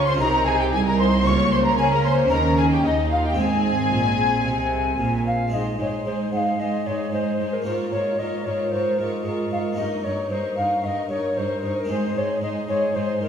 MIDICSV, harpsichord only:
0, 0, Header, 1, 2, 480
1, 0, Start_track
1, 0, Key_signature, -4, "major"
1, 0, Tempo, 532860
1, 1131, Time_signature, 4, 2, 24, 8
1, 7856, Tempo, 528634
1, 12001, End_track
2, 0, Start_track
2, 0, Title_t, "Harpsichord"
2, 0, Program_c, 0, 6
2, 0, Note_on_c, 0, 58, 64
2, 0, Note_on_c, 0, 63, 59
2, 0, Note_on_c, 0, 67, 65
2, 120, Note_off_c, 0, 58, 0
2, 127, Note_off_c, 0, 63, 0
2, 130, Note_on_c, 0, 60, 55
2, 133, Note_off_c, 0, 67, 0
2, 146, Note_on_c, 0, 63, 59
2, 161, Note_on_c, 0, 68, 58
2, 172, Note_on_c, 0, 48, 62
2, 615, Note_off_c, 0, 48, 0
2, 655, Note_on_c, 0, 36, 58
2, 1079, Note_off_c, 0, 60, 0
2, 1087, Note_off_c, 0, 63, 0
2, 1092, Note_on_c, 0, 58, 56
2, 1094, Note_off_c, 0, 68, 0
2, 1096, Note_off_c, 0, 36, 0
2, 1105, Note_on_c, 0, 61, 57
2, 1122, Note_on_c, 0, 65, 56
2, 1132, Note_on_c, 0, 49, 66
2, 1573, Note_off_c, 0, 49, 0
2, 1594, Note_off_c, 0, 61, 0
2, 1605, Note_on_c, 0, 61, 60
2, 2038, Note_off_c, 0, 58, 0
2, 2046, Note_off_c, 0, 61, 0
2, 2053, Note_off_c, 0, 65, 0
2, 2057, Note_on_c, 0, 61, 49
2, 2071, Note_on_c, 0, 63, 53
2, 2088, Note_on_c, 0, 51, 57
2, 2530, Note_off_c, 0, 51, 0
2, 2559, Note_on_c, 0, 39, 47
2, 2998, Note_on_c, 0, 56, 54
2, 3005, Note_off_c, 0, 61, 0
2, 3009, Note_off_c, 0, 39, 0
2, 3011, Note_on_c, 0, 60, 51
2, 3012, Note_off_c, 0, 63, 0
2, 3027, Note_on_c, 0, 63, 52
2, 3040, Note_on_c, 0, 44, 55
2, 3493, Note_off_c, 0, 44, 0
2, 3526, Note_on_c, 0, 46, 51
2, 3977, Note_off_c, 0, 46, 0
2, 4013, Note_on_c, 0, 48, 52
2, 4462, Note_off_c, 0, 48, 0
2, 4493, Note_on_c, 0, 46, 48
2, 4921, Note_off_c, 0, 56, 0
2, 4928, Note_off_c, 0, 60, 0
2, 4935, Note_on_c, 0, 56, 31
2, 4936, Note_off_c, 0, 63, 0
2, 4943, Note_off_c, 0, 46, 0
2, 4954, Note_on_c, 0, 60, 31
2, 4966, Note_on_c, 0, 68, 31
2, 4981, Note_on_c, 0, 44, 32
2, 5197, Note_off_c, 0, 44, 0
2, 5216, Note_on_c, 0, 44, 34
2, 5435, Note_off_c, 0, 44, 0
2, 5455, Note_on_c, 0, 44, 33
2, 5674, Note_off_c, 0, 44, 0
2, 5701, Note_on_c, 0, 44, 33
2, 5917, Note_off_c, 0, 44, 0
2, 5942, Note_on_c, 0, 44, 32
2, 6158, Note_off_c, 0, 44, 0
2, 6185, Note_on_c, 0, 44, 36
2, 6399, Note_off_c, 0, 44, 0
2, 6419, Note_on_c, 0, 44, 28
2, 6635, Note_off_c, 0, 44, 0
2, 6668, Note_on_c, 0, 44, 33
2, 6839, Note_off_c, 0, 56, 0
2, 6849, Note_off_c, 0, 60, 0
2, 6854, Note_off_c, 0, 68, 0
2, 6865, Note_on_c, 0, 58, 32
2, 6879, Note_off_c, 0, 44, 0
2, 6883, Note_on_c, 0, 61, 29
2, 6893, Note_on_c, 0, 65, 32
2, 6904, Note_on_c, 0, 44, 34
2, 7117, Note_off_c, 0, 44, 0
2, 7144, Note_on_c, 0, 44, 34
2, 7358, Note_off_c, 0, 44, 0
2, 7387, Note_on_c, 0, 44, 34
2, 7600, Note_off_c, 0, 44, 0
2, 7630, Note_on_c, 0, 44, 36
2, 7840, Note_off_c, 0, 44, 0
2, 7869, Note_on_c, 0, 44, 31
2, 8080, Note_off_c, 0, 44, 0
2, 8101, Note_on_c, 0, 44, 35
2, 8316, Note_off_c, 0, 44, 0
2, 8338, Note_on_c, 0, 44, 31
2, 8554, Note_off_c, 0, 44, 0
2, 8574, Note_on_c, 0, 44, 34
2, 8759, Note_off_c, 0, 58, 0
2, 8770, Note_on_c, 0, 58, 33
2, 8774, Note_off_c, 0, 61, 0
2, 8779, Note_off_c, 0, 65, 0
2, 8787, Note_on_c, 0, 61, 33
2, 8792, Note_off_c, 0, 44, 0
2, 8801, Note_on_c, 0, 63, 31
2, 8816, Note_on_c, 0, 43, 39
2, 9033, Note_off_c, 0, 43, 0
2, 9052, Note_on_c, 0, 43, 36
2, 9271, Note_off_c, 0, 43, 0
2, 9294, Note_on_c, 0, 43, 32
2, 9513, Note_off_c, 0, 43, 0
2, 9530, Note_on_c, 0, 43, 37
2, 9750, Note_off_c, 0, 43, 0
2, 9761, Note_on_c, 0, 43, 38
2, 9986, Note_off_c, 0, 43, 0
2, 10008, Note_on_c, 0, 43, 37
2, 10229, Note_off_c, 0, 43, 0
2, 10240, Note_on_c, 0, 43, 33
2, 10465, Note_off_c, 0, 43, 0
2, 10498, Note_on_c, 0, 43, 36
2, 10679, Note_off_c, 0, 58, 0
2, 10687, Note_off_c, 0, 61, 0
2, 10688, Note_on_c, 0, 56, 36
2, 10694, Note_off_c, 0, 63, 0
2, 10700, Note_on_c, 0, 60, 32
2, 10712, Note_on_c, 0, 63, 35
2, 10714, Note_off_c, 0, 43, 0
2, 10727, Note_on_c, 0, 44, 38
2, 10948, Note_off_c, 0, 44, 0
2, 10968, Note_on_c, 0, 44, 37
2, 11188, Note_off_c, 0, 44, 0
2, 11211, Note_on_c, 0, 44, 36
2, 11430, Note_off_c, 0, 44, 0
2, 11456, Note_on_c, 0, 44, 39
2, 11672, Note_off_c, 0, 44, 0
2, 11697, Note_on_c, 0, 44, 40
2, 11912, Note_off_c, 0, 44, 0
2, 11933, Note_on_c, 0, 44, 38
2, 12001, Note_off_c, 0, 44, 0
2, 12001, Note_off_c, 0, 56, 0
2, 12001, Note_off_c, 0, 60, 0
2, 12001, Note_off_c, 0, 63, 0
2, 12001, End_track
0, 0, End_of_file